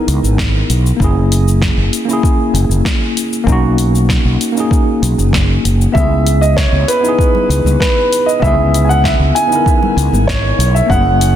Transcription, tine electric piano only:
0, 0, Header, 1, 2, 480
1, 0, Start_track
1, 0, Tempo, 618557
1, 778, Time_signature, 4, 2, 24, 8
1, 8814, End_track
2, 0, Start_track
2, 0, Title_t, "Tine electric piano"
2, 0, Program_c, 0, 4
2, 0, Control_c, 0, 64, 127
2, 0, Note_on_c, 0, 59, 81
2, 0, Note_on_c, 0, 63, 70
2, 0, Note_on_c, 0, 64, 67
2, 0, Note_on_c, 0, 68, 109
2, 0, Note_on_c, 0, 70, 82
2, 739, Note_off_c, 0, 59, 0
2, 749, Note_on_c, 0, 58, 79
2, 750, Note_off_c, 0, 63, 0
2, 759, Note_off_c, 0, 64, 0
2, 768, Note_off_c, 0, 70, 0
2, 772, Note_on_c, 0, 61, 71
2, 787, Control_c, 0, 64, 0
2, 788, Note_off_c, 0, 68, 0
2, 789, Note_on_c, 0, 64, 77
2, 809, Note_on_c, 0, 68, 86
2, 928, Control_c, 0, 64, 127
2, 1574, Note_off_c, 0, 58, 0
2, 1586, Note_off_c, 0, 61, 0
2, 1593, Note_on_c, 0, 58, 82
2, 1594, Note_off_c, 0, 64, 0
2, 1604, Note_off_c, 0, 68, 0
2, 1614, Note_on_c, 0, 61, 74
2, 1632, Note_on_c, 0, 64, 76
2, 1653, Note_on_c, 0, 68, 92
2, 2656, Note_off_c, 0, 58, 0
2, 2667, Note_off_c, 0, 61, 0
2, 2669, Note_on_c, 0, 58, 92
2, 2676, Note_off_c, 0, 64, 0
2, 2686, Note_off_c, 0, 68, 0
2, 2688, Note_on_c, 0, 61, 89
2, 2706, Control_c, 0, 64, 0
2, 2708, Note_on_c, 0, 63, 87
2, 2733, Note_on_c, 0, 66, 101
2, 2849, Control_c, 0, 64, 127
2, 3494, Note_off_c, 0, 58, 0
2, 3504, Note_off_c, 0, 61, 0
2, 3512, Note_on_c, 0, 58, 79
2, 3514, Note_off_c, 0, 63, 0
2, 3526, Note_off_c, 0, 66, 0
2, 3530, Note_on_c, 0, 61, 68
2, 3551, Note_on_c, 0, 63, 70
2, 3570, Note_on_c, 0, 68, 86
2, 4576, Note_off_c, 0, 58, 0
2, 4585, Note_off_c, 0, 61, 0
2, 4595, Note_off_c, 0, 63, 0
2, 4596, Note_on_c, 0, 59, 80
2, 4605, Note_off_c, 0, 68, 0
2, 4617, Note_on_c, 0, 61, 72
2, 4627, Control_c, 0, 64, 0
2, 4638, Note_on_c, 0, 64, 71
2, 4655, Note_on_c, 0, 68, 85
2, 4759, Control_c, 0, 64, 127
2, 5418, Note_off_c, 0, 59, 0
2, 5429, Note_off_c, 0, 61, 0
2, 5436, Note_on_c, 0, 59, 81
2, 5439, Note_off_c, 0, 64, 0
2, 5448, Note_off_c, 0, 68, 0
2, 5457, Note_on_c, 0, 63, 77
2, 5479, Note_on_c, 0, 64, 77
2, 5499, Note_on_c, 0, 68, 92
2, 6498, Note_off_c, 0, 59, 0
2, 6508, Note_off_c, 0, 63, 0
2, 6515, Note_on_c, 0, 59, 94
2, 6519, Note_off_c, 0, 64, 0
2, 6529, Note_off_c, 0, 68, 0
2, 6531, Note_on_c, 0, 61, 87
2, 6553, Note_on_c, 0, 64, 92
2, 6572, Note_on_c, 0, 68, 108
2, 7337, Note_off_c, 0, 59, 0
2, 7345, Note_off_c, 0, 61, 0
2, 7354, Note_on_c, 0, 59, 79
2, 7356, Note_off_c, 0, 64, 0
2, 7366, Note_off_c, 0, 68, 0
2, 7372, Note_on_c, 0, 63, 70
2, 7394, Note_on_c, 0, 64, 72
2, 7414, Note_on_c, 0, 70, 86
2, 8417, Note_off_c, 0, 59, 0
2, 8426, Note_off_c, 0, 63, 0
2, 8430, Note_on_c, 0, 58, 82
2, 8437, Note_off_c, 0, 64, 0
2, 8444, Note_on_c, 0, 61, 76
2, 8447, Note_off_c, 0, 70, 0
2, 8468, Control_c, 0, 64, 0
2, 8468, Note_on_c, 0, 64, 75
2, 8488, Note_on_c, 0, 68, 85
2, 8609, Control_c, 0, 64, 127
2, 8814, Note_off_c, 0, 58, 0
2, 8814, Note_off_c, 0, 61, 0
2, 8814, Note_off_c, 0, 64, 0
2, 8814, Note_off_c, 0, 68, 0
2, 8814, End_track
0, 0, End_of_file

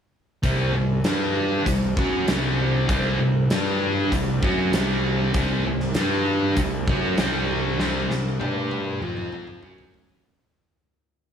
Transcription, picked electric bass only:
0, 0, Header, 1, 2, 480
1, 0, Start_track
1, 0, Tempo, 613497
1, 338, Time_signature, 4, 2, 24, 8
1, 8864, End_track
2, 0, Start_track
2, 0, Title_t, "Picked electric bass"
2, 0, Program_c, 0, 34
2, 341, Note_on_c, 0, 36, 79
2, 562, Note_off_c, 0, 36, 0
2, 581, Note_on_c, 0, 36, 71
2, 802, Note_off_c, 0, 36, 0
2, 819, Note_on_c, 0, 43, 75
2, 1267, Note_off_c, 0, 43, 0
2, 1303, Note_on_c, 0, 36, 76
2, 1524, Note_off_c, 0, 36, 0
2, 1541, Note_on_c, 0, 42, 85
2, 1763, Note_off_c, 0, 42, 0
2, 1779, Note_on_c, 0, 36, 83
2, 2228, Note_off_c, 0, 36, 0
2, 2262, Note_on_c, 0, 36, 81
2, 2484, Note_off_c, 0, 36, 0
2, 2494, Note_on_c, 0, 36, 77
2, 2720, Note_off_c, 0, 36, 0
2, 2738, Note_on_c, 0, 43, 85
2, 3189, Note_off_c, 0, 43, 0
2, 3221, Note_on_c, 0, 36, 79
2, 3445, Note_off_c, 0, 36, 0
2, 3460, Note_on_c, 0, 42, 81
2, 3685, Note_off_c, 0, 42, 0
2, 3694, Note_on_c, 0, 36, 92
2, 4148, Note_off_c, 0, 36, 0
2, 4178, Note_on_c, 0, 36, 85
2, 4404, Note_off_c, 0, 36, 0
2, 4419, Note_on_c, 0, 36, 73
2, 4645, Note_off_c, 0, 36, 0
2, 4662, Note_on_c, 0, 43, 78
2, 5113, Note_off_c, 0, 43, 0
2, 5138, Note_on_c, 0, 36, 72
2, 5365, Note_off_c, 0, 36, 0
2, 5378, Note_on_c, 0, 42, 88
2, 5605, Note_off_c, 0, 42, 0
2, 5614, Note_on_c, 0, 36, 82
2, 6069, Note_off_c, 0, 36, 0
2, 6093, Note_on_c, 0, 36, 84
2, 6322, Note_off_c, 0, 36, 0
2, 6328, Note_on_c, 0, 36, 74
2, 6559, Note_off_c, 0, 36, 0
2, 6574, Note_on_c, 0, 43, 78
2, 7027, Note_off_c, 0, 43, 0
2, 7046, Note_on_c, 0, 41, 88
2, 7502, Note_off_c, 0, 41, 0
2, 7530, Note_on_c, 0, 42, 79
2, 7983, Note_off_c, 0, 42, 0
2, 8864, End_track
0, 0, End_of_file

